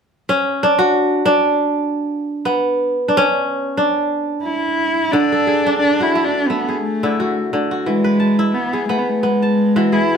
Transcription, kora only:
0, 0, Header, 1, 2, 480
1, 0, Start_track
1, 0, Tempo, 686499
1, 1661, Time_signature, 4, 2, 24, 8
1, 7111, End_track
2, 0, Start_track
2, 0, Title_t, "Kora"
2, 0, Program_c, 0, 46
2, 203, Note_on_c, 0, 61, 80
2, 441, Note_on_c, 0, 62, 76
2, 483, Note_off_c, 0, 61, 0
2, 549, Note_on_c, 0, 66, 81
2, 874, Note_off_c, 0, 62, 0
2, 877, Note_on_c, 0, 62, 77
2, 1572, Note_off_c, 0, 66, 0
2, 1715, Note_on_c, 0, 59, 60
2, 2052, Note_off_c, 0, 62, 0
2, 2156, Note_on_c, 0, 62, 58
2, 2218, Note_on_c, 0, 61, 84
2, 2260, Note_off_c, 0, 62, 0
2, 2639, Note_on_c, 0, 62, 62
2, 2681, Note_off_c, 0, 61, 0
2, 3018, Note_off_c, 0, 59, 0
2, 3588, Note_on_c, 0, 50, 76
2, 3721, Note_on_c, 0, 69, 56
2, 3813, Note_off_c, 0, 62, 0
2, 3824, Note_on_c, 0, 68, 61
2, 3960, Note_on_c, 0, 62, 70
2, 4197, Note_on_c, 0, 66, 63
2, 4302, Note_on_c, 0, 57, 76
2, 4344, Note_off_c, 0, 68, 0
2, 4541, Note_off_c, 0, 57, 0
2, 4543, Note_on_c, 0, 57, 65
2, 4643, Note_off_c, 0, 69, 0
2, 4674, Note_on_c, 0, 68, 53
2, 4908, Note_off_c, 0, 50, 0
2, 4916, Note_on_c, 0, 50, 72
2, 4917, Note_on_c, 0, 64, 61
2, 5029, Note_off_c, 0, 66, 0
2, 5032, Note_on_c, 0, 66, 64
2, 5135, Note_off_c, 0, 62, 0
2, 5257, Note_off_c, 0, 50, 0
2, 5265, Note_on_c, 0, 50, 70
2, 5389, Note_off_c, 0, 66, 0
2, 5392, Note_on_c, 0, 66, 57
2, 5498, Note_on_c, 0, 52, 70
2, 5537, Note_off_c, 0, 50, 0
2, 5624, Note_on_c, 0, 71, 64
2, 5628, Note_off_c, 0, 68, 0
2, 5731, Note_on_c, 0, 81, 58
2, 5862, Note_off_c, 0, 64, 0
2, 5865, Note_on_c, 0, 64, 76
2, 5940, Note_off_c, 0, 57, 0
2, 6105, Note_on_c, 0, 68, 58
2, 6147, Note_off_c, 0, 81, 0
2, 6218, Note_on_c, 0, 59, 73
2, 6414, Note_off_c, 0, 66, 0
2, 6451, Note_off_c, 0, 59, 0
2, 6453, Note_on_c, 0, 59, 69
2, 6483, Note_off_c, 0, 71, 0
2, 6590, Note_on_c, 0, 81, 60
2, 6631, Note_off_c, 0, 68, 0
2, 6816, Note_off_c, 0, 52, 0
2, 6824, Note_on_c, 0, 52, 76
2, 6825, Note_on_c, 0, 66, 58
2, 6938, Note_on_c, 0, 68, 59
2, 6961, Note_off_c, 0, 64, 0
2, 6980, Note_off_c, 0, 81, 0
2, 7111, Note_off_c, 0, 52, 0
2, 7111, Note_off_c, 0, 59, 0
2, 7111, Note_off_c, 0, 66, 0
2, 7111, Note_off_c, 0, 68, 0
2, 7111, End_track
0, 0, End_of_file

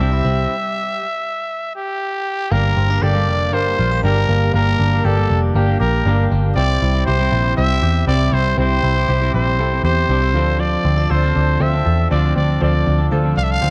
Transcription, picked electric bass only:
0, 0, Header, 1, 2, 480
1, 0, Start_track
1, 0, Tempo, 504626
1, 477, Time_signature, 4, 2, 24, 8
1, 13033, End_track
2, 0, Start_track
2, 0, Title_t, "Picked electric bass"
2, 0, Program_c, 0, 34
2, 0, Note_on_c, 0, 36, 116
2, 194, Note_off_c, 0, 36, 0
2, 235, Note_on_c, 0, 36, 99
2, 433, Note_off_c, 0, 36, 0
2, 2396, Note_on_c, 0, 31, 120
2, 2595, Note_off_c, 0, 31, 0
2, 2633, Note_on_c, 0, 31, 103
2, 2833, Note_off_c, 0, 31, 0
2, 2876, Note_on_c, 0, 31, 90
2, 3118, Note_off_c, 0, 31, 0
2, 3118, Note_on_c, 0, 29, 86
2, 3360, Note_off_c, 0, 29, 0
2, 3360, Note_on_c, 0, 31, 109
2, 3558, Note_off_c, 0, 31, 0
2, 3608, Note_on_c, 0, 34, 103
2, 3802, Note_off_c, 0, 34, 0
2, 3839, Note_on_c, 0, 31, 108
2, 4037, Note_off_c, 0, 31, 0
2, 4080, Note_on_c, 0, 31, 101
2, 4278, Note_off_c, 0, 31, 0
2, 4319, Note_on_c, 0, 31, 115
2, 4518, Note_off_c, 0, 31, 0
2, 4561, Note_on_c, 0, 31, 100
2, 4759, Note_off_c, 0, 31, 0
2, 4802, Note_on_c, 0, 31, 100
2, 4999, Note_off_c, 0, 31, 0
2, 5043, Note_on_c, 0, 29, 96
2, 5240, Note_off_c, 0, 29, 0
2, 5278, Note_on_c, 0, 31, 115
2, 5477, Note_off_c, 0, 31, 0
2, 5524, Note_on_c, 0, 34, 104
2, 5720, Note_off_c, 0, 34, 0
2, 5756, Note_on_c, 0, 31, 106
2, 5956, Note_off_c, 0, 31, 0
2, 6009, Note_on_c, 0, 31, 110
2, 6203, Note_off_c, 0, 31, 0
2, 6244, Note_on_c, 0, 36, 104
2, 6441, Note_off_c, 0, 36, 0
2, 6490, Note_on_c, 0, 36, 107
2, 6684, Note_off_c, 0, 36, 0
2, 6731, Note_on_c, 0, 36, 97
2, 6925, Note_off_c, 0, 36, 0
2, 6964, Note_on_c, 0, 34, 94
2, 7161, Note_off_c, 0, 34, 0
2, 7213, Note_on_c, 0, 36, 109
2, 7406, Note_off_c, 0, 36, 0
2, 7442, Note_on_c, 0, 40, 110
2, 7640, Note_off_c, 0, 40, 0
2, 7679, Note_on_c, 0, 36, 116
2, 7878, Note_off_c, 0, 36, 0
2, 7917, Note_on_c, 0, 36, 96
2, 8116, Note_off_c, 0, 36, 0
2, 8162, Note_on_c, 0, 36, 109
2, 8359, Note_off_c, 0, 36, 0
2, 8402, Note_on_c, 0, 36, 106
2, 8599, Note_off_c, 0, 36, 0
2, 8644, Note_on_c, 0, 36, 96
2, 8840, Note_off_c, 0, 36, 0
2, 8886, Note_on_c, 0, 34, 97
2, 9116, Note_off_c, 0, 34, 0
2, 9116, Note_on_c, 0, 36, 103
2, 9316, Note_off_c, 0, 36, 0
2, 9355, Note_on_c, 0, 40, 90
2, 9555, Note_off_c, 0, 40, 0
2, 9596, Note_on_c, 0, 36, 94
2, 9840, Note_off_c, 0, 36, 0
2, 9840, Note_on_c, 0, 38, 94
2, 10234, Note_off_c, 0, 38, 0
2, 10319, Note_on_c, 0, 38, 104
2, 10517, Note_off_c, 0, 38, 0
2, 10566, Note_on_c, 0, 38, 99
2, 10761, Note_off_c, 0, 38, 0
2, 10807, Note_on_c, 0, 38, 91
2, 11001, Note_off_c, 0, 38, 0
2, 11036, Note_on_c, 0, 38, 98
2, 11234, Note_off_c, 0, 38, 0
2, 11282, Note_on_c, 0, 40, 101
2, 11478, Note_off_c, 0, 40, 0
2, 11525, Note_on_c, 0, 38, 95
2, 11719, Note_off_c, 0, 38, 0
2, 11763, Note_on_c, 0, 38, 94
2, 11958, Note_off_c, 0, 38, 0
2, 12005, Note_on_c, 0, 38, 118
2, 12199, Note_off_c, 0, 38, 0
2, 12245, Note_on_c, 0, 38, 103
2, 12439, Note_off_c, 0, 38, 0
2, 12481, Note_on_c, 0, 38, 103
2, 12676, Note_off_c, 0, 38, 0
2, 12721, Note_on_c, 0, 36, 93
2, 12916, Note_off_c, 0, 36, 0
2, 12964, Note_on_c, 0, 38, 98
2, 13033, Note_off_c, 0, 38, 0
2, 13033, End_track
0, 0, End_of_file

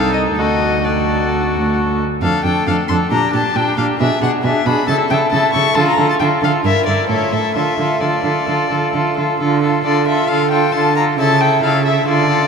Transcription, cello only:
0, 0, Header, 1, 2, 480
1, 0, Start_track
1, 0, Key_signature, -1, "minor"
1, 0, Tempo, 458716
1, 400, Time_signature, 4, 2, 24, 8
1, 2802, Tempo, 442152
1, 7122, Tempo, 457666
1, 10002, Tempo, 445434
1, 13312, End_track
2, 0, Start_track
2, 0, Title_t, "Cello"
2, 0, Program_c, 0, 42
2, 0, Note_on_c, 0, 36, 44
2, 394, Note_off_c, 0, 36, 0
2, 401, Note_on_c, 0, 38, 37
2, 2080, Note_off_c, 0, 38, 0
2, 2319, Note_on_c, 0, 41, 42
2, 2403, Note_off_c, 0, 41, 0
2, 2556, Note_on_c, 0, 41, 37
2, 2640, Note_off_c, 0, 41, 0
2, 2793, Note_on_c, 0, 41, 39
2, 2879, Note_off_c, 0, 41, 0
2, 3043, Note_on_c, 0, 41, 42
2, 3130, Note_off_c, 0, 41, 0
2, 3278, Note_on_c, 0, 46, 42
2, 3365, Note_off_c, 0, 46, 0
2, 3521, Note_on_c, 0, 46, 38
2, 3607, Note_off_c, 0, 46, 0
2, 3757, Note_on_c, 0, 46, 39
2, 3844, Note_off_c, 0, 46, 0
2, 3997, Note_on_c, 0, 46, 36
2, 4084, Note_off_c, 0, 46, 0
2, 4246, Note_on_c, 0, 47, 54
2, 4333, Note_off_c, 0, 47, 0
2, 4477, Note_on_c, 0, 47, 46
2, 4564, Note_off_c, 0, 47, 0
2, 4714, Note_on_c, 0, 47, 45
2, 4801, Note_off_c, 0, 47, 0
2, 4954, Note_on_c, 0, 47, 50
2, 5041, Note_off_c, 0, 47, 0
2, 5195, Note_on_c, 0, 49, 49
2, 5282, Note_off_c, 0, 49, 0
2, 5439, Note_on_c, 0, 49, 40
2, 5526, Note_off_c, 0, 49, 0
2, 5680, Note_on_c, 0, 49, 44
2, 5766, Note_off_c, 0, 49, 0
2, 5918, Note_on_c, 0, 49, 43
2, 6005, Note_off_c, 0, 49, 0
2, 6150, Note_on_c, 0, 50, 51
2, 6237, Note_off_c, 0, 50, 0
2, 6384, Note_on_c, 0, 50, 41
2, 6471, Note_off_c, 0, 50, 0
2, 6632, Note_on_c, 0, 50, 43
2, 6719, Note_off_c, 0, 50, 0
2, 6870, Note_on_c, 0, 50, 44
2, 6957, Note_off_c, 0, 50, 0
2, 7111, Note_on_c, 0, 43, 49
2, 7195, Note_off_c, 0, 43, 0
2, 7349, Note_on_c, 0, 43, 38
2, 7433, Note_off_c, 0, 43, 0
2, 7577, Note_on_c, 0, 45, 36
2, 7661, Note_off_c, 0, 45, 0
2, 7822, Note_on_c, 0, 45, 30
2, 7906, Note_off_c, 0, 45, 0
2, 8064, Note_on_c, 0, 50, 34
2, 8148, Note_off_c, 0, 50, 0
2, 8302, Note_on_c, 0, 50, 33
2, 8386, Note_off_c, 0, 50, 0
2, 8545, Note_on_c, 0, 50, 28
2, 8629, Note_off_c, 0, 50, 0
2, 8780, Note_on_c, 0, 50, 35
2, 8864, Note_off_c, 0, 50, 0
2, 9030, Note_on_c, 0, 50, 35
2, 9114, Note_off_c, 0, 50, 0
2, 9277, Note_on_c, 0, 50, 31
2, 9361, Note_off_c, 0, 50, 0
2, 9518, Note_on_c, 0, 50, 31
2, 9602, Note_off_c, 0, 50, 0
2, 9765, Note_on_c, 0, 50, 26
2, 9849, Note_off_c, 0, 50, 0
2, 9997, Note_on_c, 0, 50, 45
2, 10425, Note_off_c, 0, 50, 0
2, 10479, Note_on_c, 0, 50, 40
2, 10908, Note_off_c, 0, 50, 0
2, 10964, Note_on_c, 0, 50, 41
2, 11391, Note_off_c, 0, 50, 0
2, 11449, Note_on_c, 0, 50, 38
2, 11870, Note_off_c, 0, 50, 0
2, 11920, Note_on_c, 0, 49, 45
2, 12345, Note_off_c, 0, 49, 0
2, 12404, Note_on_c, 0, 49, 46
2, 12828, Note_off_c, 0, 49, 0
2, 12875, Note_on_c, 0, 50, 47
2, 13300, Note_off_c, 0, 50, 0
2, 13312, End_track
0, 0, End_of_file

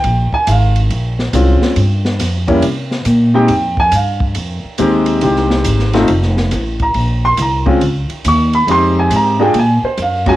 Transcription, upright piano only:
0, 0, Header, 1, 2, 480
1, 0, Start_track
1, 0, Key_signature, -4, "minor"
1, 0, Tempo, 432277
1, 48, Time_signature, 4, 2, 24, 8
1, 7718, Key_signature, -5, "minor"
1, 11507, End_track
2, 0, Start_track
2, 0, Title_t, "Upright piano"
2, 0, Program_c, 0, 0
2, 0, Note_on_c, 0, 79, 90
2, 341, Note_off_c, 0, 79, 0
2, 375, Note_on_c, 0, 80, 107
2, 517, Note_on_c, 0, 76, 55
2, 527, Note_off_c, 0, 80, 0
2, 549, Note_off_c, 0, 76, 0
2, 569, Note_on_c, 0, 77, 78
2, 855, Note_off_c, 0, 77, 0
2, 1484, Note_on_c, 0, 56, 70
2, 1493, Note_on_c, 0, 60, 65
2, 1495, Note_on_c, 0, 61, 65
2, 1497, Note_on_c, 0, 65, 87
2, 1963, Note_off_c, 0, 56, 0
2, 1968, Note_off_c, 0, 60, 0
2, 1969, Note_off_c, 0, 61, 0
2, 1970, Note_off_c, 0, 65, 0
2, 2747, Note_on_c, 0, 55, 79
2, 2751, Note_on_c, 0, 58, 74
2, 2753, Note_on_c, 0, 61, 78
2, 2756, Note_on_c, 0, 64, 86
2, 2899, Note_off_c, 0, 55, 0
2, 2901, Note_off_c, 0, 58, 0
2, 2902, Note_off_c, 0, 61, 0
2, 2904, Note_off_c, 0, 64, 0
2, 3712, Note_on_c, 0, 56, 75
2, 3718, Note_on_c, 0, 60, 74
2, 3718, Note_on_c, 0, 63, 75
2, 3720, Note_on_c, 0, 67, 86
2, 3726, Note_on_c, 0, 79, 96
2, 3861, Note_off_c, 0, 56, 0
2, 3864, Note_off_c, 0, 60, 0
2, 3864, Note_off_c, 0, 63, 0
2, 3865, Note_off_c, 0, 67, 0
2, 4168, Note_off_c, 0, 79, 0
2, 4217, Note_on_c, 0, 80, 115
2, 4365, Note_off_c, 0, 80, 0
2, 4389, Note_on_c, 0, 77, 67
2, 4682, Note_off_c, 0, 77, 0
2, 5313, Note_on_c, 0, 56, 84
2, 5318, Note_on_c, 0, 63, 74
2, 5320, Note_on_c, 0, 60, 72
2, 5320, Note_on_c, 0, 67, 81
2, 5784, Note_off_c, 0, 56, 0
2, 5787, Note_off_c, 0, 60, 0
2, 5789, Note_off_c, 0, 63, 0
2, 5794, Note_off_c, 0, 67, 0
2, 5800, Note_on_c, 0, 56, 61
2, 5804, Note_on_c, 0, 60, 59
2, 5806, Note_on_c, 0, 63, 57
2, 5810, Note_on_c, 0, 67, 73
2, 6533, Note_off_c, 0, 56, 0
2, 6534, Note_off_c, 0, 60, 0
2, 6535, Note_off_c, 0, 63, 0
2, 6538, Note_off_c, 0, 67, 0
2, 6592, Note_on_c, 0, 57, 92
2, 6598, Note_on_c, 0, 60, 87
2, 6598, Note_on_c, 0, 65, 91
2, 6599, Note_on_c, 0, 63, 80
2, 6740, Note_off_c, 0, 57, 0
2, 6743, Note_off_c, 0, 60, 0
2, 6743, Note_off_c, 0, 63, 0
2, 6743, Note_off_c, 0, 65, 0
2, 7576, Note_on_c, 0, 82, 100
2, 8013, Note_off_c, 0, 82, 0
2, 8049, Note_on_c, 0, 84, 107
2, 8200, Note_off_c, 0, 84, 0
2, 8236, Note_on_c, 0, 82, 83
2, 8415, Note_off_c, 0, 82, 0
2, 8504, Note_on_c, 0, 56, 83
2, 8513, Note_on_c, 0, 61, 72
2, 8514, Note_on_c, 0, 60, 72
2, 8519, Note_on_c, 0, 65, 88
2, 8657, Note_off_c, 0, 56, 0
2, 8661, Note_off_c, 0, 61, 0
2, 8662, Note_off_c, 0, 60, 0
2, 8664, Note_off_c, 0, 65, 0
2, 9194, Note_on_c, 0, 85, 95
2, 9485, Note_off_c, 0, 85, 0
2, 9491, Note_on_c, 0, 83, 100
2, 9643, Note_off_c, 0, 83, 0
2, 9645, Note_on_c, 0, 56, 61
2, 9648, Note_on_c, 0, 63, 65
2, 9649, Note_on_c, 0, 60, 63
2, 9652, Note_on_c, 0, 67, 73
2, 9675, Note_on_c, 0, 84, 117
2, 9967, Note_off_c, 0, 84, 0
2, 9986, Note_on_c, 0, 80, 94
2, 10131, Note_off_c, 0, 80, 0
2, 10169, Note_on_c, 0, 82, 100
2, 10378, Note_off_c, 0, 56, 0
2, 10380, Note_off_c, 0, 60, 0
2, 10380, Note_off_c, 0, 63, 0
2, 10382, Note_off_c, 0, 67, 0
2, 10431, Note_on_c, 0, 56, 85
2, 10434, Note_on_c, 0, 65, 79
2, 10436, Note_on_c, 0, 62, 79
2, 10441, Note_on_c, 0, 68, 86
2, 10454, Note_off_c, 0, 82, 0
2, 10462, Note_on_c, 0, 79, 94
2, 10582, Note_off_c, 0, 56, 0
2, 10584, Note_off_c, 0, 65, 0
2, 10585, Note_off_c, 0, 62, 0
2, 10587, Note_off_c, 0, 68, 0
2, 10609, Note_off_c, 0, 79, 0
2, 10650, Note_on_c, 0, 80, 89
2, 10934, Note_on_c, 0, 72, 69
2, 10935, Note_off_c, 0, 80, 0
2, 11086, Note_off_c, 0, 72, 0
2, 11129, Note_on_c, 0, 77, 83
2, 11398, Note_on_c, 0, 56, 78
2, 11400, Note_on_c, 0, 61, 77
2, 11406, Note_on_c, 0, 66, 86
2, 11407, Note_on_c, 0, 65, 75
2, 11416, Note_off_c, 0, 77, 0
2, 11424, Note_on_c, 0, 80, 114
2, 11507, Note_off_c, 0, 56, 0
2, 11507, Note_off_c, 0, 61, 0
2, 11507, Note_off_c, 0, 65, 0
2, 11507, Note_off_c, 0, 66, 0
2, 11507, Note_off_c, 0, 80, 0
2, 11507, End_track
0, 0, End_of_file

